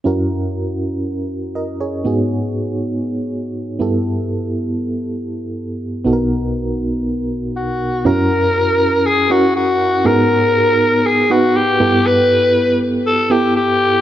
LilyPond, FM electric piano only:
<<
  \new Staff \with { instrumentName = "FM electric piano" } { \time 4/4 \key fis \mixolydian \tempo 4 = 120 << { r2. <ais' dis''>8 <gis' cis''>8~ | <gis' cis''>8 r2. r8 | r1 | r1 |
r1 | r1 | r1 | } \\ { <cis' e' fis' ais'>1 | <b dis' fis' gis'>2.~ <b dis' fis' gis'>8 <b e' g' a'>8~ | <b e' g' a'>2.~ <b e' g' a'>8 r8 | <b dis' fis' a' ais'>1 |
<cis' e' fis' ais'>4 r4. <cis' e' fis' ais'>4 r8 | <b dis' fis' gis'>4 r4. <b dis' fis' b'>4 <b e' g' a'>8~ | <b e' g' a'>4 r4. <b e' g' a'>4 r8 | } >> }
  \new Staff \with { instrumentName = "FM electric piano" } { \clef bass \time 4/4 \key fis \mixolydian fis,1 | gis,2.~ gis,8 g,8~ | g,2.~ g,8 r8 | <b,, b,>1 |
fis,1 | gis,2.~ gis,8 g,8~ | g,2.~ g,8 r8 | }
>>